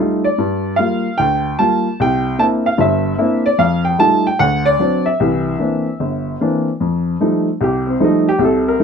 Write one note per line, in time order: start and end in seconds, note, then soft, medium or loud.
0.00 0.26 G3 soft
0.00 0.26 A3 soft
0.00 0.26 D#4 soft
0.00 0.26 F4 medium
0.24 0.75 D5 medium
0.38 0.73 G2 medium
0.76 1.06 G3 soft
0.76 1.06 A#3 soft
0.76 1.06 F4 medium
0.76 1.19 F5 medium
1.18 1.53 D2 medium
1.18 1.59 G5 medium
1.59 1.86 G3 medium
1.59 1.87 A#3 soft
1.59 1.87 F4 medium
1.59 2.00 A5 medium
2.00 2.34 C2 medium
2.00 2.41 G5 medium
2.38 2.66 A#3 soft
2.38 2.66 C4 soft
2.38 2.66 D4 soft
2.38 2.66 E4 medium
2.38 2.45 A5 medium
2.66 2.80 F5 medium
2.78 3.13 G1 medium
2.78 3.13 G2 medium
2.78 3.47 E5 medium
3.18 3.46 A#3 medium
3.18 3.46 C4 soft
3.18 3.46 D4 medium
3.18 3.46 E4 medium
3.46 3.60 D5 medium
3.58 3.93 F2 medium
3.58 3.83 F5 medium
3.85 3.98 G5 medium
3.99 4.26 G3 soft
3.99 4.26 A3 soft
3.99 4.26 D#4 soft
3.99 4.26 F4 medium
3.99 4.26 A5 medium
4.27 4.39 G5 medium
4.39 4.74 D2 medium
4.39 4.66 F#5 medium
4.65 5.06 D5 medium
4.79 5.06 F#3 soft
4.79 5.07 C4 soft
4.79 5.07 D4 medium
5.06 6.35 E5 medium
5.20 5.54 C2 medium
5.20 5.54 E3 medium
5.58 5.86 E3 soft
5.58 5.86 A#3 soft
5.58 5.86 C4 soft
5.58 5.86 D4 medium
6.00 6.34 G1 medium
6.41 6.67 E3 medium
6.41 6.67 A#3 soft
6.41 6.67 C4 soft
6.41 6.68 D4 medium
6.80 7.14 F2 medium
7.21 7.47 F3 soft
7.21 7.47 G3 soft
7.21 7.48 A3 soft
7.21 7.47 D#4 soft
7.61 7.95 C2 medium
7.61 7.87 G4 medium
7.87 8.00 C4 medium
8.00 8.27 F3 medium
8.00 8.27 G3 soft
8.00 8.27 A3 soft
8.00 8.03 D#4 medium
8.04 8.27 D#4 medium
8.29 8.41 G4 medium
8.39 8.74 C2 medium
8.39 8.74 C3 medium
8.44 8.67 A4 medium
8.68 8.81 A#4 medium
8.80 8.84 F3 soft
8.80 8.84 G3 soft
8.80 8.84 A3 soft
8.80 8.84 D#4 medium